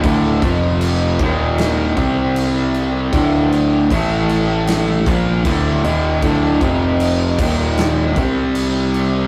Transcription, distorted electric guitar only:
\new Staff \with { instrumentName = "Distorted electric guitar" } { \clef bass \time 4/4 \key d \minor \tempo 4 = 78 <d, a, d>8 <f, c f>4 <ees, bes, ees>4 <c g c'>4. | <d, a, d>4 <a, e a>4. <bes, f bes>8 <d, a, d>8 <ees, bes, ees>8 | <d, a, d>8 <f, c f>4 <ees, bes, ees>4 <c g c'>4. | }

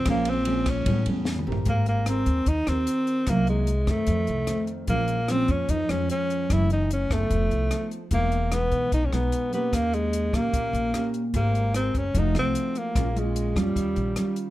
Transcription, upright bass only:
\new Staff \with { instrumentName = "Upright bass" } { \clef bass \time 4/4 \key aes \major \tempo 4 = 149 bes,,2 a,,8 e,4 a,,8 | aes,,4. ees,8 ees,8 ees,8 r4 | c,4. ges,8 f,8 c,8 r4 | bes,,4. f,8 f,8 f,8 r4 |
ges,,4. ges,,8 f,,8 c,8 r4 | e,,4. b,,8 b,,8 b,,8 r4 | ees,4. bes,,8 bes,,8 bes,,8 r4 | aes,,4. ges,,8 f,,8 c,8 r4 |
bes,,4. f,8 ees,8 bes,,8 r4 | }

